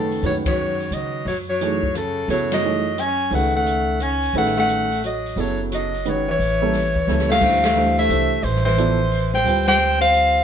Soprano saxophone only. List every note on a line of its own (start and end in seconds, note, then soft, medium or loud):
0.00 0.22 A4 medium
0.26 0.36 C#5 medium
0.47 0.95 C#5 medium
0.94 1.27 D#5 medium
1.28 1.38 C#5 medium
1.50 1.99 C#5 medium
1.97 2.30 A4 medium
2.31 2.51 C#5 medium
2.54 3.02 D#5 medium
3.01 3.33 G#5 medium
3.35 3.54 F#5 medium
3.57 4.05 F#5 medium
4.03 4.36 G#5 medium
4.38 4.57 F#5 medium
4.60 5.01 F#5 medium
5.07 5.42 D#5 medium
5.41 5.61 C#5 medium
5.75 6.11 D#5 medium
6.09 6.30 C#5 medium
6.31 7.27 C#5 medium
7.32 7.62 F5 medium
7.66 7.97 F5 medium
7.99 8.45 E5 medium
8.44 8.65 C5 medium
8.65 9.29 C5 medium
9.35 9.66 G5 loud
9.68 9.99 G5 loud
10.02 10.44 F5 loud